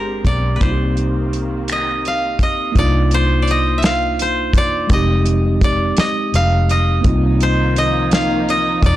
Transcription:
0.00 0.22 G1 medium
0.00 0.56 G#3 medium
0.00 0.59 G#3 medium
0.00 0.57 C4 soft
0.00 2.71 C4 medium
0.00 0.58 D4 soft
0.00 0.59 G4 medium
0.00 0.60 G4 medium
0.00 0.62 A#4 medium
0.00 0.62 C5 medium
0.00 0.26 D5 medium
0.25 0.58 B1 medium
0.25 1.78 D5 medium
0.25 kick medium
0.25 closed hi-hat soft
0.56 2.70 A#3 soft
0.56 0.68 B4 soft
0.60 2.72 C2 medium
0.60 2.73 D#3 medium
0.60 2.73 A#3 medium
0.60 2.71 C4 soft
0.60 2.72 D#4 medium
0.60 2.36 C5 medium
0.60 kick medium
0.60 closed hi-hat medium
0.65 0.70 F4 soft
0.71 2.77 G4 medium
0.97 closed hi-hat soft
1.33 closed hi-hat soft
1.68 finger snap medium
1.68 closed hi-hat medium
1.72 2.42 D#5 medium
2.05 3.52 F5 medium
2.05 closed hi-hat soft
2.39 2.85 D#5 medium
2.39 kick medium
2.39 closed hi-hat soft
2.72 4.54 C2 medium
2.72 4.84 A#3 medium
2.72 4.85 D4 medium
2.72 kick loud
2.72 closed hi-hat medium
2.77 4.87 D#4 medium
2.77 4.88 F4 medium
2.77 3.42 D5 medium
3.11 4.21 C5 medium
3.11 closed hi-hat soft
3.42 3.57 D5 medium
3.47 3.84 D#5 medium
3.47 closed hi-hat soft
3.78 3.91 E5 medium
3.82 5.30 F5 medium
3.82 snare loud
3.82 closed hi-hat medium
4.19 5.93 C5 medium
4.19 closed hi-hat medium
4.53 4.86 E1 medium
4.53 kick medium
4.53 closed hi-hat medium
4.58 4.99 D5 medium
4.87 5.93 F1 loud
4.87 6.99 G#3 medium
4.87 7.00 C4 medium
4.87 kick medium
4.87 closed hi-hat medium
4.92 7.01 D#4 medium
4.92 7.02 G4 medium
4.92 5.70 D#5 medium
5.26 closed hi-hat medium
5.61 6.05 D5 medium
5.61 kick medium
5.61 closed hi-hat soft
5.97 6.70 D#5 medium
5.97 muted fingered electric bass stroke soft
5.97 snare loud
5.97 closed hi-hat medium
6.34 7.01 F1 medium
6.34 7.80 F5 medium
6.34 closed hi-hat soft
6.69 7.78 D#5 medium
6.69 closed hi-hat medium
7.01 8.96 D#3 medium
7.01 8.96 F3 medium
7.01 8.96 A#3 medium
7.01 8.96 C4 medium
7.01 8.96 D#4 medium
7.01 kick loud
7.01 closed hi-hat medium
7.05 8.79 C2 loud
7.05 8.96 D#4 medium
7.05 8.96 F4 medium
7.40 8.96 C5 medium
7.40 closed hi-hat soft
7.76 8.50 D#5 medium
7.76 closed hi-hat soft
8.11 8.96 F5 medium
8.11 snare loud
8.11 closed hi-hat medium
8.49 8.92 D#5 medium
8.49 closed hi-hat soft
8.83 8.96 E1 loud
8.83 8.96 D5 medium
8.83 kick medium
8.83 closed hi-hat medium

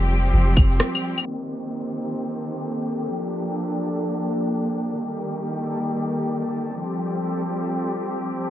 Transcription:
0.00 0.33 F1 medium
0.00 1.24 F3 medium
0.00 1.22 G3 medium
0.00 1.24 C4 medium
0.00 1.22 G4 loud
0.00 shaker soft
0.26 shaker medium
0.33 0.55 F1 medium
0.57 0.80 F1 medium
0.57 kick loud
0.57 claves medium
0.72 shaker medium
0.80 cross-stick loud
0.95 claves medium
0.95 shaker soft
1.18 claves medium
1.18 shaker medium
1.25 3.07 D#3 medium
1.25 6.71 A#3 medium
1.25 3.07 C4 medium
1.25 4.89 G4 medium
1.25 8.50 A4 medium
1.25 downlifter medium
3.09 4.91 F3 medium
3.09 4.91 D4 medium
4.93 6.74 D#3 medium
4.93 6.74 G3 medium
4.93 6.74 G4 medium
6.77 8.50 F3 medium
6.77 8.50 G3 medium
6.77 8.50 C4 medium
6.77 8.50 G4 medium

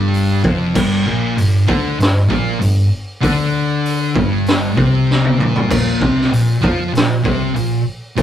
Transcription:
0.00 0.40 G1 medium
0.00 0.43 G2 medium
0.00 0.43 G3 loud
0.14 open hi-hat medium
0.44 0.73 F1 medium
0.44 0.74 F2 loud
0.44 0.75 F3 loud
0.44 kick loud
0.75 1.04 G1 medium
0.75 1.05 G2 medium
0.75 1.05 G3 loud
0.75 kick loud
0.75 crash loud
1.06 1.36 A#1 medium
1.06 1.36 A#2 medium
1.06 1.37 A#3 loud
1.37 1.66 G1 medium
1.37 1.62 G2 medium
1.37 open hi-hat medium
1.67 1.97 D2 loud
1.67 1.97 D3 medium
1.67 1.98 D4 loud
1.67 kick loud
1.98 2.28 G1 medium
1.98 2.23 G2 medium
1.98 open hi-hat medium
2.02 snare loud
2.29 2.59 A#1 loud
2.29 2.59 A#2 loud
2.29 2.60 A#3 loud
2.29 kick medium
2.60 2.90 G1 medium
2.60 2.85 G2 medium
2.60 open hi-hat medium
3.21 4.12 D2 medium
3.21 4.14 D3 medium
3.21 4.14 D4 loud
3.21 kick loud
3.21 open hi-hat medium
3.85 open hi-hat medium
4.15 4.73 G1 loud
4.15 4.76 G2 medium
4.15 4.76 G3 loud
4.15 kick loud
4.46 snare loud
4.46 open hi-hat medium
4.77 5.35 C2 medium
4.77 5.38 C3 medium
4.77 5.38 C4 medium
4.77 kick loud
5.10 snare medium
5.24 high tom medium
5.39 5.68 A#1 medium
5.39 5.68 A#2 medium
5.39 5.69 A#3 medium
5.39 mid tom medium
5.56 floor tom medium
5.70 5.99 A#1 loud
5.70 6.00 A#2 medium
5.70 6.00 A#3 loud
5.70 kick loud
5.70 crash loud
6.01 6.30 C2 loud
6.01 6.31 C3 loud
6.01 6.31 C4 loud
6.01 kick loud
6.21 snare soft
6.32 6.61 A#1 medium
6.32 6.57 A#2 medium
6.32 open hi-hat medium
6.61 6.92 F2 loud
6.61 6.92 F3 medium
6.61 6.92 F4 loud
6.61 kick loud
6.92 7.23 A#1 medium
6.92 7.18 A#2 medium
6.92 open hi-hat medium
6.97 snare loud
7.23 7.54 C2 medium
7.23 7.54 C3 medium
7.23 7.54 C4 loud
7.23 kick loud
7.56 7.84 A#1 medium
7.56 7.80 A#2 medium
7.56 open hi-hat medium
8.17 8.22 C2 medium
8.17 8.22 C3 medium
8.17 8.22 C4 loud
8.17 kick loud
8.17 open hi-hat medium

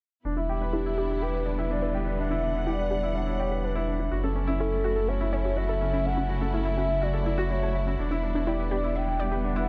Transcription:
0.25 4.10 E1 medium
0.25 4.08 D3 medium
0.25 4.08 G3 medium
0.25 4.08 B3 medium
0.25 0.32 D4 medium
0.25 2.16 E4 medium
0.37 0.44 D4 medium
0.37 0.48 E4 medium
0.49 0.56 G4 medium
0.61 0.66 D4 medium
0.61 0.73 B4 medium
0.73 0.80 D4 medium
0.73 0.81 E4 medium
0.73 1.23 G4 medium
0.86 0.93 E4 medium
0.98 1.05 D4 medium
0.98 1.05 G4 medium
1.10 1.21 E4 medium
1.21 1.29 G4 medium
1.21 1.72 B4 medium
1.21 1.27 E5 medium
1.34 1.45 B4 medium
1.46 1.53 D4 medium
1.46 1.49 D5 medium
1.58 1.65 E4 medium
1.58 1.63 G4 medium
1.70 1.77 D4 medium
1.70 2.21 D5 medium
1.82 1.94 E4 medium
1.82 1.87 B4 medium
1.94 2.01 G4 medium
2.06 2.11 D4 medium
2.06 2.18 B4 medium
2.19 2.26 D4 medium
2.19 2.69 E5 loud
2.19 4.10 F#5 medium
2.30 2.38 D4 medium
2.30 2.38 E4 medium
2.43 2.50 D4 medium
2.55 2.60 D4 medium
2.55 2.66 E4 medium
2.67 2.74 E4 medium
2.67 2.74 G4 medium
2.67 3.16 D5 medium
2.79 2.90 B4 medium
2.91 2.98 D4 medium
2.91 2.98 G4 medium
3.03 3.10 E4 medium
3.15 3.22 D4 medium
3.15 3.65 C#5 medium
3.15 3.20 E5 medium
3.27 3.39 E4 medium
3.39 3.46 G4 medium
3.39 3.42 D5 medium
3.51 3.57 G4 medium
3.51 3.63 B4 medium
3.64 3.71 D4 medium
3.64 4.00 B4 medium
3.75 3.82 E4 medium
3.75 3.81 B4 medium
3.87 3.94 D4 medium
4.00 4.05 D4 medium
4.00 4.11 E4 medium
4.11 7.96 F#1 medium
4.11 7.95 C#3 medium
4.11 7.95 F#3 medium
4.11 7.95 A3 medium
4.11 9.69 E4 medium
4.11 4.19 F#4 medium
4.24 4.32 C#4 medium
4.24 4.35 A4 medium
4.36 4.43 C#4 medium
4.47 4.53 C#4 medium
4.47 4.55 E4 medium
4.60 4.67 C#4 medium
4.60 4.68 E4 medium
4.60 5.09 A4 medium
4.72 4.84 E4 medium
4.84 4.91 F#4 medium
4.84 4.92 F#4 medium
4.96 5.08 A4 medium
5.08 5.16 C#4 medium
5.08 5.58 C#5 medium
5.08 5.14 E5 medium
5.21 5.28 E4 medium
5.33 5.40 C#4 medium
5.33 5.36 C#5 loud
5.45 5.57 E4 medium
5.45 5.50 F#4 medium
5.57 5.64 F#4 medium
5.57 6.07 E5 medium
5.69 5.80 A4 medium
5.69 5.74 A4 medium
5.81 5.88 C#4 medium
5.93 5.99 C#4 medium
5.93 6.00 E4 medium
6.05 6.12 C#4 medium
6.05 6.56 F#5 loud
6.17 6.25 C#4 medium
6.17 6.29 E4 medium
6.29 6.36 F#4 medium
6.41 6.47 C#4 medium
6.41 6.53 A4 medium
6.53 6.60 C#4 medium
6.53 6.62 E4 medium
6.53 7.04 E5 loud
6.65 6.72 E4 medium
6.77 6.84 C#4 medium
6.77 6.86 F#4 medium
6.89 7.01 E4 medium
7.01 7.09 F#4 medium
7.01 7.52 D5 medium
7.01 7.07 E5 medium
7.13 7.25 A4 medium
7.26 7.38 E4 medium
7.26 7.31 E4 medium
7.38 7.45 F#4 medium
7.38 7.44 F#4 medium
7.51 7.58 F#4 medium
7.51 7.87 C#5 medium
7.62 7.66 A4 medium
7.62 7.70 C#5 medium
7.75 7.82 E5 medium
7.87 7.90 C#4 medium
7.87 7.98 F#4 medium
7.99 9.69 E1 medium
7.99 9.69 D3 medium
7.99 9.69 G3 medium
7.99 9.69 B3 medium
7.99 8.06 D4 medium
8.11 8.19 D4 medium
8.11 8.18 E4 medium
8.23 8.30 D4 medium
8.35 8.40 D4 medium
8.35 8.47 E4 medium
8.47 8.55 E4 medium
8.47 8.55 G4 medium
8.47 8.97 D5 medium
8.60 8.71 B4 medium
8.71 8.78 D4 medium
8.71 8.79 G4 medium
8.84 8.91 E4 medium
8.95 9.03 D4 medium
8.95 9.01 E5 medium
8.95 9.46 G5 loud
9.08 9.19 E4 medium
9.20 9.27 G4 medium
9.20 9.23 D5 medium
9.32 9.37 G4 medium
9.32 9.43 B4 medium
9.44 9.51 D4 medium
9.44 9.69 F#5 medium
9.56 9.63 E4 medium
9.56 9.61 B4 medium

